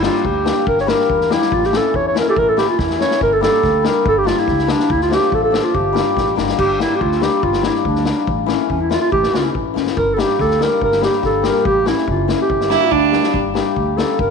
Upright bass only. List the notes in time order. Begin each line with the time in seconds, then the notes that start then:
0.24 D2
0.67 G1
1.09 E2
1.52 A1
1.94 E2
2.36 A1
2.79 E2
3.21 G1
3.63 D2
4.06 G1
4.48 C#2
4.90 D2
5.32 A1
5.75 G1
6.16 A1
6.38 G1
6.59 G1
7.01 D2
7.43 G1
7.85 D2
8.27 A1
8.70 E2
9.12 A1
9.33 C#2
9.55 A1
9.76 G1
9.97 G1
10.40 D2
10.81 G1
11.23 G1
11.65 A1
12.07 F#1
12.49 G1
12.91 D2
13.34 G1
13.76 D2
14.19 G1